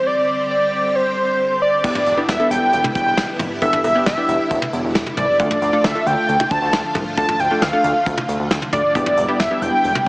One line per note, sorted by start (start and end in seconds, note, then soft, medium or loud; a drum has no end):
0.00 1.81 G3 medium
0.00 1.80 C4 medium
0.06 1.82 D3 medium
0.06 1.82 G4 medium
0.06 0.50 D5 loud
0.51 0.97 D5 medium
0.95 1.61 C5 medium
1.62 1.83 D5 medium
1.84 1.93 E1 loud
1.84 10.08 D3 medium
1.84 5.36 G3 medium
1.84 2.02 B3 medium
1.84 5.36 B3 medium
1.84 2.02 D4 medium
1.84 2.02 E4 medium
1.84 5.36 E4 medium
1.84 2.02 G4 medium
1.84 2.26 D5 medium
1.84 kick loud
1.84 crash loud
1.95 mid tom loud
2.06 2.15 E1 loud
2.06 closed hi-hat medium
2.17 2.29 B3 medium
2.17 2.29 D4 medium
2.17 2.29 E4 medium
2.17 2.29 G4 medium
2.28 2.37 E1 loud
2.28 2.49 E5 medium
2.28 snare loud
2.28 closed hi-hat medium
2.40 2.87 B3 medium
2.40 2.87 D4 medium
2.40 2.87 E4 medium
2.40 2.87 A4 medium
2.51 2.60 E1 loud
2.51 2.92 G5 loud
2.51 closed hi-hat medium
2.73 2.82 E1 loud
2.73 closed hi-hat medium
2.84 mid tom medium
2.95 3.04 E1 loud
2.95 3.37 G5 loud
2.95 kick medium
2.95 closed hi-hat medium
3.06 3.15 E1 loud
3.17 3.26 E1 loud
3.17 snare loud
3.17 closed hi-hat medium
3.39 3.48 F1 medium
3.39 closed hi-hat medium
3.39 mid tom medium
3.62 3.71 E1 loud
3.62 3.80 B3 medium
3.62 3.80 D4 medium
3.62 3.80 E4 medium
3.62 3.80 A4 medium
3.62 3.83 E5 loud
3.62 kick loud
3.62 closed hi-hat medium
3.73 mid tom loud
3.84 3.93 E1 loud
3.84 4.05 E5 loud
3.84 closed hi-hat medium
3.84 cowbell medium
3.95 4.07 B3 medium
3.95 4.07 D4 medium
3.95 4.07 E4 medium
3.95 4.07 G4 medium
4.06 4.15 E1 loud
4.06 4.69 E5 loud
4.06 snare loud
4.06 closed hi-hat medium
4.17 4.65 B3 medium
4.17 4.65 D4 medium
4.17 4.65 E4 medium
4.17 4.65 G4 medium
4.29 4.37 E1 loud
4.29 closed hi-hat medium
4.51 4.60 E1 loud
4.51 kick loud
4.51 closed hi-hat medium
4.62 mid tom medium
4.73 4.82 E1 loud
4.73 closed hi-hat medium
4.84 4.93 E1 loud
4.95 5.04 E1 loud
4.95 snare loud
4.95 closed hi-hat medium
5.06 mid tom medium
5.17 5.26 C2 loud
5.17 5.38 D5 medium
5.17 closed hi-hat medium
5.17 mid tom medium
5.40 5.48 D2 loud
5.40 8.92 F3 medium
5.40 5.57 A3 medium
5.40 8.92 A3 medium
5.40 5.57 D4 medium
5.40 5.57 F4 medium
5.40 8.92 F4 medium
5.40 5.57 A4 medium
5.40 5.86 D5 loud
5.40 kick loud
5.40 closed hi-hat medium
5.51 mid tom loud
5.62 5.71 D2 loud
5.62 closed hi-hat medium
5.73 5.85 A3 medium
5.73 5.85 D4 medium
5.73 5.85 F4 medium
5.73 5.85 A4 medium
5.84 5.93 D2 loud
5.84 6.08 E5 loud
5.84 snare loud
5.84 closed hi-hat medium
5.95 6.43 A3 medium
5.95 6.43 D4 medium
5.95 6.43 F4 medium
5.95 6.43 A4 medium
6.06 6.15 D2 loud
6.06 6.52 G5 loud
6.06 closed hi-hat medium
6.29 6.37 D2 loud
6.29 closed hi-hat medium
6.40 mid tom medium
6.51 6.60 D2 loud
6.51 6.95 A5 loud
6.51 kick medium
6.51 closed hi-hat medium
6.62 6.71 D2 loud
6.73 6.82 D2 loud
6.73 snare loud
6.73 closed hi-hat medium
6.95 7.04 C2 medium
6.95 closed hi-hat medium
6.95 mid tom medium
6.95 cowbell medium
7.17 7.26 D2 loud
7.17 7.35 A3 medium
7.17 7.35 D4 medium
7.17 7.35 F4 medium
7.17 7.35 A4 medium
7.17 7.41 A5 loud
7.17 kick loud
7.17 closed hi-hat medium
7.29 mid tom loud
7.39 7.49 D2 medium
7.39 7.63 G5 loud
7.39 closed hi-hat medium
7.51 7.63 A3 medium
7.51 7.63 D4 medium
7.51 7.63 F4 medium
7.51 7.63 A4 medium
7.62 7.71 D2 loud
7.62 8.29 F5 medium
7.62 snare loud
7.62 closed hi-hat medium
7.73 8.20 A3 medium
7.73 8.20 D4 medium
7.73 8.20 F4 medium
7.73 8.20 A4 medium
7.84 7.93 D2 loud
7.84 closed hi-hat medium
8.06 8.15 D2 loud
8.06 kick loud
8.06 closed hi-hat medium
8.18 mid tom medium
8.29 8.37 D2 loud
8.29 closed hi-hat medium
8.40 8.48 D2 loud
8.51 8.60 D2 loud
8.51 snare loud
8.51 closed hi-hat medium
8.62 mid tom medium
8.73 8.82 D2 medium
8.73 8.94 D5 medium
8.73 closed hi-hat medium
8.73 mid tom loud
8.95 9.04 E1 loud
8.95 10.08 G3 medium
8.95 10.08 B3 medium
8.95 9.13 B3 medium
8.95 9.13 D4 medium
8.95 9.13 E4 medium
8.95 10.08 E4 medium
8.95 9.13 G4 medium
8.95 9.37 D5 medium
8.95 kick loud
8.95 closed hi-hat medium
9.06 mid tom loud
9.17 9.26 E1 loud
9.17 closed hi-hat medium
9.28 9.40 B3 medium
9.28 9.40 D4 medium
9.28 9.40 E4 medium
9.28 9.40 G4 medium
9.40 9.48 E1 loud
9.40 9.63 E5 loud
9.40 snare loud
9.40 closed hi-hat medium
9.51 9.98 B3 medium
9.51 9.98 D4 medium
9.51 9.98 E4 medium
9.51 9.98 G4 medium
9.62 9.71 E1 loud
9.62 10.06 G5 loud
9.62 closed hi-hat medium
9.84 9.93 E1 loud
9.84 closed hi-hat medium
9.95 mid tom medium